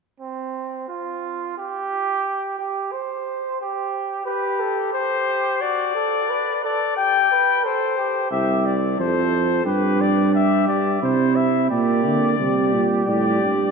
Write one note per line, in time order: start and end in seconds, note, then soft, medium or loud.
0.20 0.84 C4 medium
0.88 1.55 F4 medium
1.58 2.57 G4 medium
2.59 2.94 G4 medium
2.92 3.59 C5 medium
3.61 4.24 G4 medium
4.25 4.88 G4 medium
4.25 4.61 B4 medium
4.60 4.93 A4 medium
4.93 5.62 G4 medium
4.93 5.63 C5 medium
5.61 5.94 F#4 medium
5.61 6.63 D5 medium
5.95 6.31 A4 medium
6.30 6.63 B4 medium
6.63 6.96 A4 medium
6.63 6.96 D5 medium
6.97 7.30 G4 medium
6.97 7.63 G5 loud
7.31 7.66 B4 medium
7.64 7.99 A4 medium
7.64 8.30 C5 medium
7.98 8.30 G4 medium
8.31 8.95 C2 medium
8.31 8.74 G4 medium
8.31 8.67 E5 medium
8.66 8.99 D5 medium
8.98 9.65 F2 medium
8.98 9.62 A4 medium
8.98 9.65 C5 medium
9.65 10.66 G2 medium
9.65 10.32 G4 medium
9.65 10.03 B4 medium
10.01 10.34 D5 medium
10.32 11.00 G4 medium
10.32 10.68 E5 medium
10.68 11.02 G2 medium
10.68 11.02 D5 medium
11.02 11.69 C3 medium
11.02 11.69 E4 medium
11.02 11.37 C5 medium
11.36 11.70 E5 medium
11.70 12.07 A#2 medium
11.70 12.35 A#3 medium
11.70 12.35 G4 medium
11.70 12.90 D5 medium
12.05 12.39 D3 medium
12.39 12.75 C3 medium
12.39 13.71 G3 medium
12.39 13.71 G4 medium
12.73 13.07 A#2 medium
13.07 13.41 A2 medium
13.07 13.71 D5 medium
13.43 13.71 G2 medium